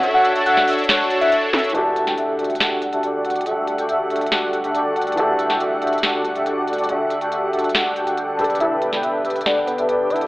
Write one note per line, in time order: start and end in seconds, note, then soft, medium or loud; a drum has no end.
0.03 0.33 D4 medium
0.03 0.33 F#4 medium
0.03 0.33 A4 medium
0.03 0.33 C#5 medium
0.03 0.33 E5 loud
0.03 closed hi-hat medium
0.14 0.32 F#5 medium
0.25 closed hi-hat medium
0.35 0.44 D4 loud
0.35 0.44 F#4 medium
0.35 0.44 A4 medium
0.35 0.44 C#5 medium
0.35 0.44 A5 loud
0.35 closed hi-hat medium
0.46 0.65 D4 medium
0.46 0.65 F#4 medium
0.46 0.65 A4 medium
0.46 0.65 C#5 medium
0.46 0.65 E5 loud
0.46 0.69 F#5 loud
0.46 closed hi-hat medium
0.57 snare soft
0.67 0.83 D4 medium
0.67 0.83 F#4 medium
0.67 0.83 A4 medium
0.67 0.83 C#5 medium
0.67 0.83 E5 loud
0.67 open hi-hat loud
0.73 closed hi-hat medium
0.79 closed hi-hat soft
0.84 closed hi-hat medium
0.89 0.98 D4 loud
0.89 0.98 F#4 medium
0.89 0.98 A4 medium
0.89 0.98 C#5 medium
0.89 0.98 F#5 loud
0.89 snare loud
0.89 closed hi-hat medium
1.00 1.08 D4 medium
1.00 1.08 F#4 medium
1.00 1.08 A4 medium
1.00 1.08 C#5 medium
1.00 1.08 F#5 medium
1.10 1.19 D4 medium
1.10 1.19 F#4 medium
1.10 1.19 A4 medium
1.10 1.19 C#5 medium
1.10 1.19 A5 loud
1.10 closed hi-hat medium
1.21 1.30 D4 medium
1.21 1.30 F#4 medium
1.21 1.30 A4 medium
1.21 1.30 C#5 medium
1.21 1.33 E5 medium
1.21 1.30 F#5 medium
1.21 closed hi-hat medium
1.32 1.51 D4 medium
1.32 1.51 F#4 medium
1.32 1.51 A4 medium
1.32 1.51 C#5 medium
1.32 1.51 A5 medium
1.32 closed hi-hat medium
1.53 1.72 D4 medium
1.53 1.72 F#4 medium
1.53 1.72 A4 medium
1.53 1.72 C#5 medium
1.53 1.72 E5 medium
1.53 snare medium
1.53 closed hi-hat medium
1.59 closed hi-hat medium
1.64 closed hi-hat medium
1.69 5.14 E3 medium
1.69 closed hi-hat medium
1.74 8.37 E1 medium
1.74 10.27 D3 medium
1.74 8.35 G3 medium
1.74 8.35 A3 medium
1.74 5.15 D4 medium
1.74 2.04 D4 medium
1.74 2.04 F#4 medium
1.74 5.15 F#4 medium
1.74 2.04 G4 medium
1.74 5.16 G4 medium
1.74 2.04 A4 medium
1.74 5.16 A4 medium
1.74 2.04 E5 medium
1.74 8.35 F#5 medium
1.74 closed hi-hat medium
1.96 closed hi-hat medium
2.07 2.15 D4 medium
2.07 2.15 F#4 medium
2.07 2.15 G4 medium
2.07 2.15 A4 medium
2.07 2.15 G5 medium
2.07 snare soft
2.07 closed hi-hat medium
2.17 2.36 D4 medium
2.17 2.36 F#4 medium
2.17 2.36 G4 medium
2.17 2.36 A4 medium
2.17 2.36 E5 medium
2.17 closed hi-hat medium
2.39 2.54 D4 medium
2.39 2.54 F#4 medium
2.39 2.54 G4 medium
2.39 2.54 A4 medium
2.39 2.54 E5 medium
2.39 closed hi-hat soft
2.44 closed hi-hat medium
2.50 closed hi-hat soft
2.55 closed hi-hat medium
2.60 2.70 D4 medium
2.60 2.70 F#4 medium
2.60 2.70 G4 medium
2.60 2.70 A4 medium
2.60 2.70 F#5 loud
2.60 snare loud
2.60 closed hi-hat medium
2.71 2.86 D4 medium
2.71 2.86 F#4 medium
2.71 2.86 G4 medium
2.71 2.86 A4 medium
2.71 2.86 F#5 medium
2.82 closed hi-hat medium
2.93 3.01 D4 medium
2.93 3.01 F#4 medium
2.93 3.01 G4 medium
2.93 3.01 A4 medium
2.93 3.01 E5 loud
2.93 closed hi-hat medium
3.03 3.22 D4 medium
3.03 3.22 F#4 medium
3.03 3.22 G4 medium
3.03 3.22 A4 medium
3.03 3.22 D5 medium
3.03 closed hi-hat medium
3.25 3.34 D4 medium
3.25 3.34 F#4 medium
3.25 3.34 G4 medium
3.25 3.34 A4 medium
3.25 3.34 F#5 medium
3.25 closed hi-hat soft
3.30 closed hi-hat medium
3.35 3.44 D4 medium
3.35 3.44 F#4 medium
3.35 3.44 G4 medium
3.35 3.44 A4 medium
3.35 3.44 D5 medium
3.35 closed hi-hat soft
3.41 closed hi-hat medium
3.46 3.76 D4 medium
3.46 3.76 F#4 medium
3.46 3.76 G4 medium
3.46 3.76 A4 medium
3.46 3.76 E5 loud
3.46 closed hi-hat medium
3.68 closed hi-hat medium
3.78 3.86 D4 medium
3.78 3.86 F#4 medium
3.78 3.86 G4 medium
3.78 3.86 A4 medium
3.78 3.86 G5 medium
3.78 closed hi-hat medium
3.89 4.08 D4 medium
3.89 4.08 F#4 medium
3.89 4.08 G4 medium
3.89 4.08 A4 medium
3.89 4.08 E5 medium
3.89 closed hi-hat medium
4.10 4.25 D4 medium
4.10 4.25 F#4 medium
4.10 4.25 G4 medium
4.10 4.25 A4 medium
4.10 4.25 E5 medium
4.10 closed hi-hat soft
4.16 closed hi-hat medium
4.21 closed hi-hat soft
4.27 closed hi-hat medium
4.32 4.41 D4 medium
4.32 4.41 F#4 medium
4.32 4.41 G4 medium
4.32 4.41 A4 medium
4.32 4.41 F#5 loud
4.32 snare loud
4.32 closed hi-hat medium
4.43 4.58 D4 medium
4.43 4.58 F#4 medium
4.43 4.58 G4 medium
4.43 4.57 A4 medium
4.43 4.57 F#5 medium
4.53 closed hi-hat medium
4.64 4.72 D4 medium
4.64 4.72 F#4 medium
4.64 4.72 G4 medium
4.64 4.72 A4 medium
4.64 4.72 E5 loud
4.64 closed hi-hat medium
4.75 4.94 D4 medium
4.75 4.94 F#4 medium
4.75 4.94 G4 medium
4.75 4.94 A4 medium
4.75 4.94 D5 loud
4.75 closed hi-hat medium
4.96 5.05 D4 medium
4.96 5.05 F#4 medium
4.96 5.05 G4 medium
4.96 5.05 A4 medium
4.96 5.05 F#5 medium
4.96 closed hi-hat soft
5.02 closed hi-hat medium
5.07 5.15 D4 medium
5.07 5.15 F#4 medium
5.07 5.15 G4 medium
5.07 5.15 A4 medium
5.07 5.15 D5 medium
5.07 closed hi-hat soft
5.12 8.35 E3 medium
5.12 closed hi-hat medium
5.17 8.35 D4 medium
5.17 5.47 D4 medium
5.17 5.47 F#4 medium
5.17 8.36 F#4 medium
5.17 5.47 G4 medium
5.17 8.37 G4 medium
5.17 5.47 A4 medium
5.17 8.37 A4 medium
5.17 5.47 E5 medium
5.17 closed hi-hat medium
5.39 closed hi-hat medium
5.50 5.58 D4 medium
5.50 5.58 F#4 medium
5.50 5.58 G4 medium
5.50 5.58 A4 medium
5.50 5.58 G5 loud
5.50 snare soft
5.50 closed hi-hat medium
5.60 5.79 D4 medium
5.60 5.79 F#4 medium
5.60 5.79 G4 medium
5.60 5.79 A4 medium
5.60 5.79 E5 medium
5.60 closed hi-hat medium
5.82 5.97 D4 medium
5.82 5.97 F#4 medium
5.82 5.97 G4 medium
5.82 5.97 A4 medium
5.82 5.97 E5 medium
5.82 closed hi-hat soft
5.87 closed hi-hat medium
5.93 closed hi-hat soft
5.98 closed hi-hat medium
6.03 6.12 D4 loud
6.03 6.13 F#4 medium
6.03 6.13 G4 medium
6.03 6.12 A4 medium
6.03 6.13 F#5 loud
6.03 snare loud
6.03 closed hi-hat medium
6.14 6.29 D4 medium
6.14 6.29 F#4 medium
6.14 6.29 G4 medium
6.14 6.29 A4 medium
6.14 6.29 F#5 medium
6.25 closed hi-hat medium
6.36 6.44 D4 medium
6.36 6.44 F#4 medium
6.36 6.44 G4 medium
6.36 6.44 A4 medium
6.36 6.44 E5 loud
6.36 closed hi-hat medium
6.46 6.65 D4 medium
6.46 6.65 F#4 medium
6.46 6.65 G4 medium
6.46 6.65 A4 medium
6.46 6.65 D5 loud
6.46 closed hi-hat medium
6.68 6.77 D4 medium
6.68 6.77 F#4 medium
6.68 6.77 G4 medium
6.68 6.77 A4 medium
6.68 6.77 F#5 medium
6.68 closed hi-hat soft
6.73 closed hi-hat medium
6.78 6.87 D4 medium
6.78 6.87 F#4 medium
6.78 6.87 G4 medium
6.78 6.87 A4 medium
6.78 6.87 D5 medium
6.78 closed hi-hat soft
6.84 closed hi-hat medium
6.89 7.19 D4 medium
6.89 7.19 F#4 medium
6.89 7.19 G4 medium
6.89 7.19 A4 medium
6.89 7.19 E5 loud
6.89 closed hi-hat medium
7.10 closed hi-hat medium
7.21 7.29 D4 medium
7.21 7.29 F#4 medium
7.21 7.29 G4 medium
7.21 7.29 A4 medium
7.21 7.29 G5 loud
7.21 closed hi-hat medium
7.32 7.51 D4 medium
7.32 7.51 F#4 medium
7.32 7.51 G4 medium
7.32 7.51 A4 medium
7.32 7.51 E5 medium
7.32 closed hi-hat medium
7.53 7.68 D4 medium
7.53 7.68 F#4 medium
7.53 7.68 G4 medium
7.53 7.68 A4 medium
7.53 7.68 E5 loud
7.53 closed hi-hat soft
7.59 closed hi-hat medium
7.64 closed hi-hat soft
7.69 closed hi-hat medium
7.75 7.84 D4 medium
7.75 7.84 F#4 medium
7.75 7.84 G4 medium
7.75 7.84 A4 medium
7.75 7.84 F#5 loud
7.75 snare loud
7.75 closed hi-hat medium
7.86 7.94 D4 medium
7.86 7.94 F#4 medium
7.86 7.94 G4 medium
7.86 7.94 A4 medium
7.86 7.94 F#5 medium
7.96 8.04 D4 medium
7.96 8.04 F#4 medium
7.96 8.04 G4 medium
7.96 8.04 A4 medium
7.96 8.04 G5 medium
7.96 closed hi-hat medium
8.07 8.16 D4 medium
8.07 8.16 F#4 medium
8.07 8.16 G4 medium
8.07 8.16 A4 medium
8.07 8.16 F#5 medium
8.07 closed hi-hat medium
8.18 8.36 D4 medium
8.18 8.37 F#4 medium
8.18 8.36 G4 medium
8.18 8.36 A4 medium
8.18 8.36 G5 medium
8.18 closed hi-hat medium
8.37 10.27 E1 medium
8.37 10.09 B3 medium
8.37 10.27 D4 medium
8.37 8.58 D4 medium
8.37 10.27 G4 medium
8.37 8.58 G4 medium
8.37 8.58 A4 medium
8.37 8.58 B4 medium
8.37 8.58 D5 medium
8.37 closed hi-hat soft
8.41 10.27 A4 medium
8.41 closed hi-hat medium
8.50 closed hi-hat soft
8.55 closed hi-hat medium
8.60 8.90 D4 medium
8.60 8.90 G4 medium
8.60 8.90 A4 medium
8.60 8.90 B4 medium
8.60 8.72 E5 medium
8.60 8.90 E5 medium
8.60 closed hi-hat medium
8.82 closed hi-hat medium
8.93 9.01 D4 medium
8.93 9.01 G4 medium
8.93 9.01 A4 medium
8.93 9.01 B4 medium
8.93 9.01 G5 loud
8.93 snare soft
8.93 closed hi-hat medium
9.03 9.22 D4 medium
9.03 9.22 G4 medium
9.03 9.22 A4 medium
9.03 9.22 B4 medium
9.03 9.22 E5 medium
9.03 closed hi-hat medium
9.25 9.40 D4 medium
9.25 9.40 G4 medium
9.25 9.40 A4 medium
9.25 9.40 B4 medium
9.25 9.40 E5 medium
9.25 closed hi-hat soft
9.30 closed hi-hat medium
9.36 closed hi-hat soft
9.41 closed hi-hat medium
9.46 9.55 D4 loud
9.46 9.55 G4 medium
9.46 9.55 A4 medium
9.46 9.55 B4 medium
9.46 9.58 D5 medium
9.46 9.55 F#5 loud
9.46 snare loud
9.46 closed hi-hat medium
9.57 9.72 D4 medium
9.57 9.72 G4 medium
9.57 9.72 A4 medium
9.57 9.72 B4 medium
9.57 9.72 F#5 medium
9.68 10.12 B4 loud
9.68 closed hi-hat medium
9.78 9.86 D4 medium
9.78 9.86 G4 medium
9.78 9.86 A4 medium
9.78 9.86 B4 medium
9.78 9.86 E5 medium
9.78 closed hi-hat medium
9.89 10.08 D4 medium
9.89 10.08 G4 medium
9.89 10.08 A4 medium
9.89 10.08 B4 medium
9.89 10.08 D5 loud
9.89 closed hi-hat medium
10.10 10.20 D4 medium
10.10 10.20 G4 medium
10.10 10.20 A4 medium
10.10 10.20 B4 medium
10.10 10.27 C#5 medium
10.10 10.27 E5 medium
10.10 10.20 F#5 medium
10.10 closed hi-hat soft
10.16 closed hi-hat medium
10.21 10.27 D4 medium
10.21 10.27 G4 medium
10.21 10.27 A4 medium
10.21 10.27 B4 medium
10.21 10.27 D5 medium
10.21 closed hi-hat soft